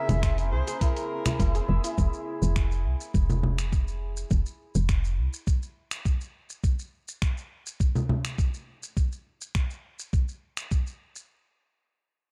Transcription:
Already playing: synth drone C#3 A#3 C4 E4 G#4, santur G#4 A#4 C5, kamancheh E5
0.09 fm bass F1, santur E4, closed hi-hat, low conga, shaker
0.23 santur C5, finger snap, kick, closed hi-hat, shaker
0.38 closed hi-hat, shaker
0.52 fm bass C2, santur G#4, kamancheh C5
0.67 santur G#4, closed hi-hat, shaker
0.81 santur E4, kamancheh A#4, kick, closed hi-hat, shaker
0.97 closed hi-hat, shaker
1.26 santur E4, finger snap, closed hi-hat, low conga, shaker
1.40 fm bass F1, santur E4, kick, closed hi-hat, shaker
1.55 santur G#4, closed hi-hat, shaker
1.68 fm bass F1, santur E5
1.84 santur E4, closed hi-hat, shaker
1.98 fm bass F1, kick, shaker
2.13 shaker
2.42 fm bass F1, shaker
2.56 finger snap, kick, shaker
2.71 shaker
2.85 fm bass C2
3.01 shaker
3.14 fm bass F1, kick, shaker
3.30 low conga, shaker
3.43 low conga
3.59 finger snap, shaker
3.73 kick, shaker
3.88 shaker
4.17 shaker
4.31 fm bass F1, kick, shaker
4.46 shaker
4.75 fm bass F1, shaker
4.89 finger snap, kick, shaker
5.04 shaker
5.18 fm bass C2
5.33 shaker
5.47 kick, shaker
5.63 shaker
5.91 finger snap, shaker
6.05 kick, shaker
6.21 shaker
6.50 shaker
6.64 kick, shaker
6.79 shaker
7.08 shaker
7.22 finger snap, kick, shaker
7.38 shaker
7.66 shaker
7.80 kick, shaker
7.95 low conga, shaker
8.09 low conga
8.25 finger snap, shaker
8.38 kick, shaker
8.54 shaker
8.83 shaker
8.97 kick, shaker
9.12 shaker
9.41 shaker
9.55 finger snap, kick, shaker
9.70 shaker
9.99 shaker
10.13 kick, shaker
10.28 shaker
10.57 finger snap, shaker
10.71 kick, shaker
10.87 shaker
11.16 shaker

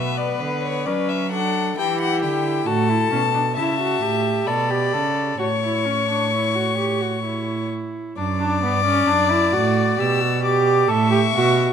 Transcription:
Already playing: cello B2, viola B3, violin B4 E5
0.17 violin D5
0.40 cello D3, violin B4
0.63 violin C#5
0.86 cello F#3, viola C#4, violin B4 D5
1.09 violin E5
1.31 viola D4, violin A4 F#5
1.76 cello E3, viola E4, violin G4 G5
2.01 violin F#5
2.22 cello D3, violin G5
2.67 cello A2, viola F#4, violin A4 A5
2.89 viola E4
3.12 cello B2, viola C#4
3.34 viola D4
3.56 cello C#3, viola E4, violin E5 A5
3.80 viola F#4
4.02 cello A2, viola G4
4.47 cello B2, viola A4, violin D5 B5
4.70 viola G4
4.93 cello C#3, viola A4
5.39 cello A2, viola F#4, violin C#5 C#6
5.62 viola E4
5.85 viola C#4
6.08 viola D4
6.33 viola E4
6.55 viola F#4
6.78 viola G4
7.01 viola F#4
7.24 viola E4
8.17 cello F#2, viola D4, violin D5 D6
8.39 viola D4
8.63 cello G2, viola B3
8.85 viola C#4
9.07 cello F#2, viola D4
9.30 viola E4
9.53 cello A2, viola F#4
9.98 cello B2, viola G4, violin E6
10.20 viola F#4
10.43 viola G4, violin D6
10.88 cello A2, viola A4, violin E5 C#6
11.11 viola G4
11.34 cello B2, viola F#4

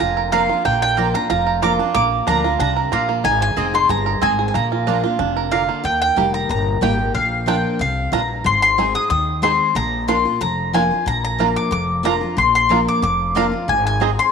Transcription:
Already playing: five-string banjo A#3 D4
0.00 upright bass F1, steel-string acoustic guitar F2, five-string banjo F4, mandolin A#5
0.17 five-string banjo A#4
0.32 steel-string acoustic guitar F3 A#3 D4 F4, mandolin A#3 F4 D5 F5 A#5, five-string banjo A#3
0.49 steel-string acoustic guitar D4 F4, five-string banjo F4
0.65 upright bass A#1, steel-string acoustic guitar A#2, five-string banjo A#3, mandolin G5
0.82 five-string banjo D4, mandolin G5
0.97 steel-string acoustic guitar F3 A#3 D4 F4, mandolin A#3 F4 D5 A#5, five-string banjo F4
1.14 steel-string acoustic guitar D4 F4, five-string banjo A#4, mandolin A#5
1.30 upright bass F1, steel-string acoustic guitar F2, five-string banjo F4, mandolin A#5
1.47 five-string banjo A#4
1.62 steel-string acoustic guitar F3 A#3 D4 F4, mandolin A#3 F4 D5 A#5 D6, five-string banjo F4
1.79 five-string banjo D4, steel-string acoustic guitar D4 F4
1.94 upright bass A#1, steel-string acoustic guitar A#2, five-string banjo A#3, mandolin D6
2.27 upright bass D2, steel-string acoustic guitar F3 A#3 D4 F4, mandolin A#3 F4 D5 A#5, five-string banjo D4
2.44 steel-string acoustic guitar D4 F4, five-string banjo F4
2.59 upright bass C2, steel-string acoustic guitar C3, five-string banjo D4, mandolin A#5
2.76 five-string banjo A#4
2.92 upright bass A#1, steel-string acoustic guitar A#2, mandolin A#3 F4 D5 F5 A#5, five-string banjo F4
3.09 five-string banjo A#3
3.24 upright bass G#1, steel-string acoustic guitar G#2, five-string banjo D#4, mandolin G#5
3.41 five-string banjo G#4, mandolin G#5
3.56 upright bass F1, steel-string acoustic guitar G#3 C4 D#4 G#4, mandolin C4 G#4 D#5 G#5, five-string banjo C4
3.74 five-string banjo D#4, steel-string acoustic guitar D#4 G#4, mandolin C6
3.89 upright bass G1, steel-string acoustic guitar G2, five-string banjo G#4, mandolin A#5
4.06 five-string banjo A#4
4.21 upright bass G#1, steel-string acoustic guitar G#2, mandolin C4 G#4 D#5 G#5, five-string banjo C4
4.39 five-string banjo G#4
4.48 mandolin G#5
4.54 upright bass A#1, steel-string acoustic guitar A#2, five-string banjo A#3, mandolin A#5
4.72 five-string banjo F4
4.86 steel-string acoustic guitar F3 A#3 D4 F4, mandolin A#3 F4 D5 A#5, five-string banjo D4
5.04 steel-string acoustic guitar D4 F4, five-string banjo F4
5.19 upright bass F1, steel-string acoustic guitar C3, five-string banjo D4
5.37 five-string banjo A#4
5.51 steel-string acoustic guitar D3, mandolin A#3 F4 D5 F5 A#5, five-string banjo F4
5.69 five-string banjo A#3
5.84 upright bass D#2, steel-string acoustic guitar D#3, mandolin G5
6.02 mandolin G5
6.16 upright bass F1, steel-string acoustic guitar G3 A#3 D#4 G4, five-string banjo A#3 D#4 G4
6.34 mandolin A#5
6.49 upright bass G1, steel-string acoustic guitar A#2, mandolin A#5
6.81 upright bass G#1, steel-string acoustic guitar G3 A#3 D#4 G4, five-string banjo A#3 D#4 G4, mandolin G5
6.99 steel-string acoustic guitar D#4 G4
7.14 upright bass A#1, steel-string acoustic guitar A#2, mandolin F5
7.46 steel-string acoustic guitar F3 A#3 D4 F4, five-string banjo A#3 D4 F4, mandolin G5
7.79 upright bass C2, steel-string acoustic guitar C3, mandolin F5
8.12 upright bass A#1, steel-string acoustic guitar G2, five-string banjo A#3 D4 F4, mandolin A#5
8.44 upright bass G#1, steel-string acoustic guitar G#2, mandolin C6
8.62 mandolin C6
8.78 steel-string acoustic guitar G#3 C4 D#4 G#4, five-string banjo C4 D#4 G#4
8.95 steel-string acoustic guitar D#4 G#4, mandolin D#6
9.10 upright bass D#2, steel-string acoustic guitar D#3, mandolin D#6
9.42 steel-string acoustic guitar G#3 C4 D#4 G#4, five-string banjo C4 D#4 G#4, mandolin C6
9.75 upright bass A#1, steel-string acoustic guitar A#2, mandolin A#5
10.08 steel-string acoustic guitar F3 A#3 D4 F4, five-string banjo A#3 D4 F4, mandolin C6
10.25 steel-string acoustic guitar D4 F4
10.41 upright bass F1, steel-string acoustic guitar F2, mandolin A#5
10.73 steel-string acoustic guitar F3 A#3 D4 F4, five-string banjo A#3 D4 F4, mandolin G#5
10.91 steel-string acoustic guitar D4 F4
11.06 upright bass A#1, steel-string acoustic guitar A#2, mandolin A#5
11.25 mandolin A#5
11.38 steel-string acoustic guitar F3 A#3 D4 F4, mandolin A#3 F4 D5 A#5, five-string banjo A#3 D4 F4
11.56 mandolin D6
11.71 upright bass F1, steel-string acoustic guitar F2, mandolin D6
12.03 steel-string acoustic guitar F3 A#3 D4 F4, mandolin A#3 F4 D5 A#5, five-string banjo A#3 D4 F4
12.21 steel-string acoustic guitar D4 F4
12.37 upright bass A#1, steel-string acoustic guitar A#2, mandolin C6
12.55 mandolin C6
12.69 steel-string acoustic guitar F3 A#3 D4 F4, mandolin A#3 F4 D5 A#5, five-string banjo A#3 D4 F4
12.88 mandolin D6
13.02 upright bass F1, steel-string acoustic guitar F2, mandolin D6
13.35 steel-string acoustic guitar F3 A#3 D4 F4, mandolin A#3 F4 D5 F5 A#5, five-string banjo A#3 D4 F4
13.52 steel-string acoustic guitar D4 F4
13.68 upright bass G#1, steel-string acoustic guitar G#2, mandolin G#5
13.87 mandolin G#5
14.00 steel-string acoustic guitar G#3 C4 D#4 G#4, mandolin C4 G#4 D#5 G#5, five-string banjo C4 D#4 G#4
14.19 mandolin C6

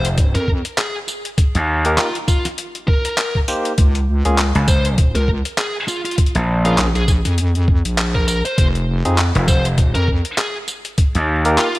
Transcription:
Already playing: slap bass F1
0.05 closed hi-hat
0.18 kick, closed hi-hat
0.35 wobble bass F2, lead electric guitar A#4, snare, closed hi-hat
0.48 kick
0.65 closed hi-hat
0.78 lead electric guitar G#4, clap, closed hi-hat
1.08 tambourine
1.25 closed hi-hat
1.38 kick, closed hi-hat
1.55 slap bass D#2, closed hi-hat
1.85 tine electric piano A#3 D#4 G4 A#4, closed hi-hat
1.98 lead electric guitar F4, clap, closed hi-hat
2.15 closed hi-hat
2.28 lead electric guitar F4, kick, tambourine
2.45 snare, closed hi-hat
2.58 closed hi-hat
2.75 closed hi-hat
2.88 lead electric guitar A#4, kick
3.05 closed hi-hat
3.18 clap, closed hi-hat
3.35 kick
3.48 tine electric piano A#3 D#4 G4 C5, tambourine
3.65 closed hi-hat
3.78 wobble bass C#2, kick, closed hi-hat
3.95 closed hi-hat
4.25 wobble bass C#2, tine electric piano A#3 C#4 F4 G#4, closed hi-hat
4.38 clap, closed hi-hat
4.55 slap bass C#2, closed hi-hat
4.68 lead electric guitar C5, kick, tambourine
4.85 closed hi-hat
4.98 kick, closed hi-hat
5.15 wobble bass C#2, lead electric guitar A#4, snare, closed hi-hat
5.28 kick
5.45 closed hi-hat
5.58 lead electric guitar G#4, clap, closed hi-hat
5.88 lead electric guitar F4, tambourine
6.05 lead electric guitar F4, closed hi-hat
6.11 closed hi-hat
6.18 kick, closed hi-hat
6.26 closed hi-hat
6.35 slap bass A#1, closed hi-hat
6.65 tine electric piano A#3 C#4 F4 G#4, lead electric guitar F4, closed hi-hat
6.78 wobble bass A#1, clap, closed hi-hat
6.95 lead electric guitar G#4, closed hi-hat
7.08 kick, tambourine
7.25 wobble bass F2, snare, closed hi-hat
7.38 closed hi-hat
7.55 closed hi-hat
7.68 kick
7.85 wobble bass A#1, closed hi-hat
7.98 clap, closed hi-hat
8.15 lead electric guitar A#4, kick
8.28 lead electric guitar A#4, tambourine
8.45 lead electric guitar C5, closed hi-hat
8.58 wobble bass F1, kick, closed hi-hat
8.75 closed hi-hat
9.05 wobble bass F2, tine electric piano C4 D#4 F4 G#4, closed hi-hat
9.18 clap, closed hi-hat
9.35 slap bass F1, closed hi-hat
9.48 lead electric guitar C5, kick, tambourine
9.65 closed hi-hat
9.78 kick, closed hi-hat
9.95 wobble bass F2, lead electric guitar A#4, snare, closed hi-hat
10.08 kick
10.25 closed hi-hat
10.38 lead electric guitar G#4, clap, closed hi-hat
10.68 tambourine
10.85 closed hi-hat
10.98 kick, closed hi-hat
11.15 slap bass D#2, closed hi-hat
11.45 tine electric piano A#3 D#4 G4 A#4, closed hi-hat
11.58 lead electric guitar F4, clap, closed hi-hat
11.75 closed hi-hat

